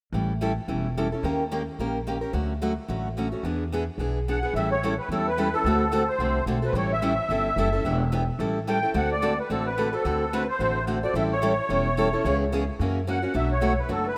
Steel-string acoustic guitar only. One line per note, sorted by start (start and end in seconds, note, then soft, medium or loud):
0.14 0.32 E3 medium
0.14 0.32 G3 medium
0.14 0.32 C#4 medium
0.14 0.32 E4 medium
0.14 0.32 A4 medium
0.41 0.51 E3 medium
0.41 0.51 G3 medium
0.41 0.51 C#4 medium
0.41 0.52 E4 medium
0.41 0.52 A4 medium
0.68 0.87 E3 medium
0.68 0.87 G3 soft
0.68 0.87 C#4 medium
0.68 0.87 E4 medium
0.68 0.87 A4 medium
0.97 1.07 E3 medium
0.97 1.07 G3 medium
0.97 1.07 C#4 medium
0.97 1.07 E4 medium
0.97 1.07 A4 medium
1.12 1.23 C#4 soft
1.12 1.24 E4 soft
1.12 1.23 A4 soft
1.24 1.42 D#3 medium
1.24 1.42 A#3 medium
1.24 1.42 C#4 medium
1.24 1.42 G4 medium
1.24 1.43 A#4 medium
1.51 1.61 D#3 medium
1.51 1.62 A#3 medium
1.51 1.62 C#4 medium
1.51 1.62 G4 medium
1.51 1.62 A#4 medium
1.79 1.97 D#3 medium
1.79 1.98 A#3 medium
1.79 1.98 C#4 medium
1.79 1.98 G4 medium
1.79 1.98 A#4 medium
2.07 2.17 D#3 medium
2.07 2.17 A#3 medium
2.07 2.17 C#4 medium
2.07 2.17 G4 medium
2.07 2.17 A#4 medium
2.21 2.33 C#4 soft
2.21 2.33 G4 soft
2.21 2.33 A#4 soft
2.33 2.52 D3 medium
2.33 2.52 F#3 medium
2.33 2.52 A3 medium
2.33 2.52 C#4 medium
2.33 2.52 F#4 medium
2.62 2.72 D3 medium
2.62 2.72 F#3 medium
2.62 2.72 A3 medium
2.62 2.72 C#4 medium
2.62 2.72 F#4 medium
2.88 3.07 D3 medium
2.88 3.07 F#3 medium
2.88 3.07 A3 medium
2.88 3.08 C#4 medium
2.88 3.08 F#4 medium
3.17 3.27 D3 medium
3.17 3.27 F#3 medium
3.17 3.27 A3 medium
3.17 3.28 C#4 medium
3.17 3.27 F#4 medium
3.32 3.44 A3 soft
3.32 3.44 C#4 soft
3.32 3.43 F#4 soft
3.45 3.63 E3 medium
3.45 3.63 B3 medium
3.45 3.63 D4 medium
3.45 3.63 G#4 medium
3.72 3.82 E3 medium
3.72 3.83 B3 medium
3.72 3.83 D4 medium
3.72 3.83 G#4 medium
3.99 4.17 E3 medium
3.99 4.18 B3 medium
3.99 4.18 D4 medium
3.99 4.18 G#4 medium
4.28 4.37 E3 medium
4.28 4.38 B3 medium
4.28 4.38 D4 medium
4.28 4.38 G#4 medium
4.43 4.55 B3 soft
4.43 4.55 D4 soft
4.43 4.54 G#4 soft
4.56 4.73 E3 medium
4.56 4.73 G3 medium
4.56 4.74 C#4 medium
4.56 4.74 E4 medium
4.56 4.74 A4 medium
4.83 4.93 E3 medium
4.83 4.93 G3 medium
4.83 4.93 C#4 medium
4.83 4.93 E4 medium
4.83 4.93 A4 medium
5.12 5.29 E3 medium
5.12 5.29 G3 medium
5.12 5.29 C#4 medium
5.12 5.29 E4 medium
5.12 5.29 A4 medium
5.37 5.47 E3 medium
5.37 5.47 G3 medium
5.37 5.47 C#4 medium
5.37 5.48 E4 medium
5.37 5.48 A4 medium
5.54 5.65 C#4 soft
5.54 5.65 E4 soft
5.54 5.64 A4 soft
5.66 5.83 D3 medium
5.66 5.83 A3 medium
5.66 5.84 C4 medium
5.66 5.84 F#4 medium
5.66 5.84 A4 medium
5.92 6.02 D3 medium
5.92 6.02 A3 medium
5.92 6.02 C4 medium
5.92 6.02 F#4 medium
5.92 6.02 A4 medium
6.20 6.38 D3 medium
6.20 6.38 A3 medium
6.20 6.38 C4 medium
6.20 6.38 F#4 medium
6.20 6.38 A4 medium
6.47 6.57 D3 medium
6.47 6.57 A3 medium
6.47 6.57 C4 medium
6.47 6.58 F#4 medium
6.47 6.57 A4 medium
6.62 6.75 C4 soft
6.62 6.74 F#4 soft
6.62 6.74 A4 medium
6.75 6.93 E3 medium
6.75 6.93 G3 medium
6.75 6.93 C#4 medium
6.75 6.93 E4 medium
6.75 6.94 A4 medium
7.02 7.12 E3 medium
7.02 7.12 G3 medium
7.02 7.12 C#4 medium
7.02 7.13 E4 medium
7.02 7.12 A4 medium
7.30 7.48 E3 medium
7.30 7.48 G3 medium
7.30 7.48 C#4 medium
7.30 7.48 E4 medium
7.30 7.49 A4 medium
7.58 7.67 E3 medium
7.58 7.68 G3 medium
7.58 7.68 C#4 medium
7.58 7.68 E4 medium
7.58 7.68 A4 medium
7.72 7.85 C#4 soft
7.72 7.84 E4 soft
7.72 7.84 A4 soft
7.85 8.03 E3 medium
7.85 8.03 B3 medium
7.85 8.03 D4 medium
7.85 8.03 G4 medium
8.12 8.22 E3 medium
8.12 8.22 B3 medium
8.12 8.22 D4 medium
8.12 8.23 G4 medium
8.40 8.58 E3 medium
8.40 8.58 G3 medium
8.40 8.58 C#4 medium
8.40 8.58 E4 medium
8.40 8.58 A4 medium
8.67 8.77 E3 medium
8.67 8.77 G3 medium
8.67 8.78 C#4 medium
8.67 8.78 E4 medium
8.67 8.78 A4 medium
8.83 8.94 C#4 soft
8.83 8.94 E4 soft
8.83 8.94 A4 soft
8.94 9.13 D3 medium
8.94 9.13 A3 medium
8.94 9.13 C4 medium
8.94 9.13 F#4 medium
8.94 9.13 A4 medium
9.22 9.32 D3 medium
9.22 9.32 A3 medium
9.22 9.32 C4 medium
9.22 9.33 F#4 medium
9.22 9.32 A4 medium
9.50 9.68 D3 medium
9.50 9.68 A3 medium
9.50 9.68 C4 medium
9.50 9.68 F#4 medium
9.50 9.69 A4 medium
9.78 9.87 D3 medium
9.78 9.87 A3 medium
9.78 9.87 C4 medium
9.78 9.88 F#4 medium
9.78 9.88 A4 medium
9.93 10.04 C4 soft
9.93 10.05 F#4 soft
9.93 10.04 A4 medium
10.05 10.23 D3 medium
10.05 10.23 A3 medium
10.05 10.23 C4 medium
10.05 10.23 F#4 medium
10.05 10.24 A4 medium
10.33 10.43 D3 medium
10.33 10.43 A3 medium
10.33 10.43 C4 medium
10.33 10.43 F#4 medium
10.33 10.43 A4 medium
10.60 10.78 D3 medium
10.60 10.78 A3 medium
10.60 10.78 C4 medium
10.60 10.79 F#4 medium
10.60 10.79 A4 medium
10.87 10.97 D3 medium
10.87 10.97 A3 medium
10.87 10.97 C4 medium
10.87 10.98 F#4 medium
10.87 10.98 A4 medium
11.03 11.15 C4 soft
11.03 11.15 F#4 soft
11.03 11.14 A4 soft
11.15 11.33 E3 medium
11.15 11.33 G3 medium
11.15 11.34 C#4 medium
11.15 11.33 E4 medium
11.15 11.34 A4 medium
11.42 11.52 E3 medium
11.42 11.52 G3 medium
11.42 11.52 C#4 medium
11.42 11.52 E4 medium
11.42 11.53 A4 medium
11.70 11.88 E3 medium
11.70 11.88 G3 medium
11.70 11.88 C#4 medium
11.70 11.88 E4 medium
11.70 11.88 A4 medium
11.97 12.07 E3 medium
11.97 12.07 G3 medium
11.97 12.08 C#4 medium
11.97 12.08 E4 medium
11.97 12.08 A4 medium
12.13 12.25 C#4 soft
12.13 12.24 E4 soft
12.13 12.24 A4 medium
12.25 12.43 C#3 medium
12.25 12.43 E3 medium
12.25 12.44 B3 medium
12.25 12.44 C#4 medium
12.25 12.44 G#4 medium
12.52 12.62 C#3 medium
12.52 12.62 E3 medium
12.52 12.63 B3 medium
12.52 12.63 C#4 medium
12.52 12.63 G#4 medium
12.81 12.98 C#3 medium
12.81 12.99 E3 medium
12.81 12.99 A#3 medium
12.81 12.99 C#4 medium
12.81 12.99 F#4 medium
13.07 13.17 C#3 medium
13.07 13.17 E3 medium
13.07 13.18 A#3 medium
13.07 13.18 C#4 medium
13.07 13.18 F#4 medium
13.22 13.34 A#3 soft
13.22 13.34 C#4 soft
13.22 13.34 F#4 soft
13.34 13.53 B2 medium
13.34 13.53 F#3 medium
13.34 13.53 A3 medium
13.34 13.53 D4 medium
13.34 13.53 F#4 medium
13.61 13.72 B2 medium
13.61 13.72 F#3 medium
13.61 13.72 A3 medium
13.61 13.72 D4 medium
13.61 13.72 F#4 medium
13.89 14.08 B2 medium
13.89 14.08 F#3 medium
13.89 14.08 A3 medium
13.89 14.08 D4 medium
13.89 14.08 F#4 medium